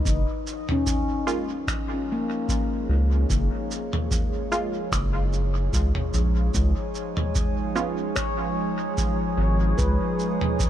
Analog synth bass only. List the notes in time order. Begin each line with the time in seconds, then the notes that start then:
0.05 F#1
2.89 C#2
3.30 F#1
4.92 F#1
5.73 C#2
6.14 A#1
6.54 C#2
9.38 G#1
9.79 C#2